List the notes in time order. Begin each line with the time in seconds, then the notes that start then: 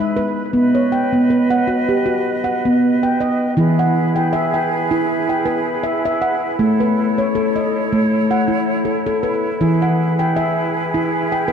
Already playing: G#4 B4 B5
0.00 E5
0.16 B4
0.53 B3 B4 D#5
0.75 C#5
0.92 G5
1.13 B3
1.30 B4
1.50 F#5
1.67 F#4
1.89 G4
2.06 F#4
2.44 F#5
2.65 B3
3.03 G5
3.21 D#5
3.56 E3 E4 G#4 B4
3.79 F#5
4.16 G5
4.33 E5
4.54 G5
4.91 E4
5.29 G5
5.46 B4
5.83 E5
6.05 E5
6.22 F#5
6.59 A3 A4 C#5
6.80 B4
7.18 C#5
7.35 A4
7.56 D#5
7.93 A3
8.31 F#5
8.48 E4
8.85 A4
9.06 A4
9.23 B4
9.61 E3 E4 G#4 B4
9.82 F#5
10.19 G5
10.36 E5
10.94 E4
11.32 G5
11.48 B4